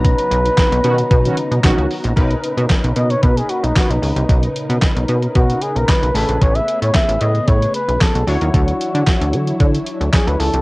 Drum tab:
HH |xxxxxxxxxxxxxxox|xxxxxxxxxxxxxxox|xxxxxxxxxxxxxxox|xxxxxxxxxxxxxxox|
CP |----x-------x---|----x-------x---|----x-------x---|----x-------x---|
SD |----o-------o---|----o-------o---|----o-------o---|----o-------o---|
BD |o---o---o---o---|o---o---o---o---|o---o---o---o---|o---o---o---o---|

HH |xxxxxxxxxxxxxxox|
CP |----x-------x---|
SD |----o-------o---|
BD |o---o---o---o---|